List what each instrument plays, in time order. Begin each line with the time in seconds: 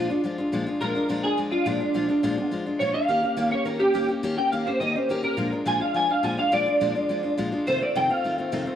Already playing: clean electric guitar F4
0.10 steel-string acoustic guitar G#3 D4 F4
0.24 steel-string acoustic guitar F3 G#3 D4 F4
0.38 steel-string acoustic guitar G#3 D4 F4
0.52 steel-string acoustic guitar A#2 F3 G#3 D4 F4
0.67 steel-string acoustic guitar G#3 D4 F4
0.81 steel-string acoustic guitar A#2 F3 G#3 D4 F4, clean electric guitar A#4
0.95 steel-string acoustic guitar G#3 D4 F4
1.09 steel-string acoustic guitar A#2 F3 G#3 D4 F4
1.23 steel-string acoustic guitar G#3 D4 F4, clean electric guitar G#4
1.37 steel-string acoustic guitar F3 G#3 D4 F4
1.51 steel-string acoustic guitar G#3 D4 F4, clean electric guitar F4
1.66 steel-string acoustic guitar A#2 F3 G#3 D4 F4, clean electric guitar D4
1.80 steel-string acoustic guitar G#3 D4 F4
1.94 steel-string acoustic guitar A#2 F3 G#3 D4 F4
2.08 steel-string acoustic guitar G#3 D4 F4
2.23 steel-string acoustic guitar A#2 F3 G#3 D4 F4
2.37 steel-string acoustic guitar G#3 D4 F4
2.51 steel-string acoustic guitar F3 G#3 D4 F4
2.66 steel-string acoustic guitar G#3 D4 F4
2.79 steel-string acoustic guitar A#2 F3 G#3 D4 F4, clean electric guitar C#5
2.94 steel-string acoustic guitar G#3 D4 F4, clean electric guitar F5
3.08 steel-string acoustic guitar D#3 A#3 C#4 G4
3.23 steel-string acoustic guitar A#3 C#4 G4
3.37 steel-string acoustic guitar D#3 A#3 C#4 G4
3.51 steel-string acoustic guitar A#3 C#4 G4, clean electric guitar C#5
3.65 steel-string acoustic guitar D#3 A#3 C#4 G4, clean electric guitar A#4
3.79 steel-string acoustic guitar A#3 C#4 G4, clean electric guitar G4
3.94 steel-string acoustic guitar D#3 A#3 C#4 G4
4.08 steel-string acoustic guitar A#3 C#4 G4
4.23 steel-string acoustic guitar D#3 A#3 C#4 G4
4.37 steel-string acoustic guitar C#4 G4, clean electric guitar G5
4.52 steel-string acoustic guitar D#3 A#3 C#4 G4, clean electric guitar F5
4.67 steel-string acoustic guitar A#3 C#4 G4, clean electric guitar C5
4.80 steel-string acoustic guitar D#3 A#3 C#4 G4, clean electric guitar D#5
4.95 steel-string acoustic guitar A#3 C#4 G4, clean electric guitar C5
5.09 steel-string acoustic guitar D#3 A#3 C#4 G4, clean electric guitar A#4
5.23 steel-string acoustic guitar A#3 C#4 G4, clean electric guitar A#4
5.37 steel-string acoustic guitar A#2 F3 G#3 D4 F4
5.52 steel-string acoustic guitar G#3 D4 F4
5.65 steel-string acoustic guitar A#2 F3 G#3 D4 F4, clean electric guitar G#5
5.80 steel-string acoustic guitar G#3 D4 F4, clean electric guitar F5
5.94 steel-string acoustic guitar F3 G#3 D4 F4, clean electric guitar G#5
6.09 steel-string acoustic guitar G#3 D4 F4, clean electric guitar F5
6.23 steel-string acoustic guitar A#2 F3 G#3 D4 F4, clean electric guitar G#5
6.37 steel-string acoustic guitar G#3 D4 F4, clean electric guitar F5
6.52 steel-string acoustic guitar A#2 F3 G#3 D4 F4, clean electric guitar D5
6.66 steel-string acoustic guitar G#3 D4 F4
6.80 steel-string acoustic guitar A#2 F3 G#3 D4 F4
6.95 steel-string acoustic guitar G#3 D4 F4
7.09 steel-string acoustic guitar F3 G#3 D4 F4
7.23 steel-string acoustic guitar G#3 D4 F4
7.38 steel-string acoustic guitar A#2 F3 G#3 D4 F4
7.52 steel-string acoustic guitar G#3 D4 F4
7.67 steel-string acoustic guitar F2 C3 D#3 A3 C4 F4, clean electric guitar C5
7.81 steel-string acoustic guitar D#3 A3 C4 F4, clean electric guitar D5
7.95 steel-string acoustic guitar F2 C3 D#3 A3 C4 F4, clean electric guitar G5
8.09 steel-string acoustic guitar D#3 A3 C4 F4, clean electric guitar F5
8.24 steel-string acoustic guitar D#3 A3 C4 F4
8.38 steel-string acoustic guitar D#3 A3 C4 F4
8.52 steel-string acoustic guitar F2 C3 D#3 A3 C4 F4
8.66 steel-string acoustic guitar D#3 A3 C4 F4